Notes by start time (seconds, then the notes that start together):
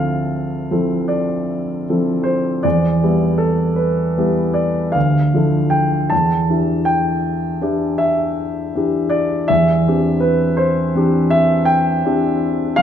Already playing: D2 F3 C4 E4 A4 F5 A5
0.71 F3 C4 E4 A4
1.08 D5
1.89 F3 C4 E4 A4
2.24 C5
2.63 E2 D5
3.03 G3 B3 E4 G4
3.38 A4
3.76 B4
4.17 G3 B3 E4 G4
4.54 D5
4.92 D2 F5
5.34 F3 D4 E4 A4
5.70 G5
6.10 E2 A5
6.49 E3 D4 E4 G4
6.85 G5
7.61 E3 D4 E4 G4
7.98 E5
8.75 E3 D4 E4 G4
9.10 D5
9.48 E2 E5
9.87 E3 C4 D4 G4
10.20 B4
10.57 C5
10.95 E3 C4 D4 G4
11.30 E5
11.65 G5
12.04 E3 C4 D4 G4
12.76 F2 F5